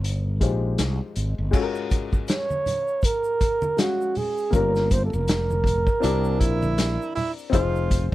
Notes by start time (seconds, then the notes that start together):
Already playing: G1 G#3 D#4 F4 G4 C5
0.04 closed hi-hat
0.40 A#1 G#3 D#4 F4 G4 C5, kick, closed hi-hat
0.78 C2, snare, closed hi-hat
1.16 G#1, closed hi-hat
1.38 G1
1.51 G#3 C#4 F4 F#4, kick, crash, shaker
1.56 A4
1.62 A#4
1.75 shaker
1.91 kick, closed hi-hat, shaker
2.13 kick, shaker
2.28 C#5, snare, closed hi-hat, shaker
2.51 high conga, shaker
2.66 closed hi-hat, high conga, low conga, shaker
2.87 shaker
3.02 A#4, kick, closed hi-hat, shaker
3.24 shaker
3.41 kick, closed hi-hat, shaker
3.62 high conga, shaker
3.77 G#3 C#4 F#4 G#4 F5, snare, closed hi-hat, shaker
4.01 shaker
4.15 G#4, open hi-hat, low conga, shaker
4.38 shaker
4.51 G1 A#3 C#4 F4, kick, closed hi-hat, shaker
4.55 G4 A#4
4.75 snare, shaker
4.91 C5, kick, closed hi-hat, shaker
5.05 A4
5.13 F1 A#4, shaker
5.28 snare, closed hi-hat, shaker
5.51 high conga, shaker
5.64 kick, closed hi-hat, high conga, low conga, shaker
5.87 kick, shaker
6.00 C2 C4 D4 E4, closed hi-hat, shaker
6.04 G4 A#4
6.24 shaker
6.40 A#1 E4, kick, closed hi-hat, shaker
6.63 high conga, shaker
6.78 snare, closed hi-hat, shaker
7.02 shaker
7.15 E4, open hi-hat, low conga, shaker
7.38 shaker
7.50 F1 C4 D#4 F4, kick, closed hi-hat, shaker
7.54 G#4 C5
7.76 shaker
7.91 kick, closed hi-hat, shaker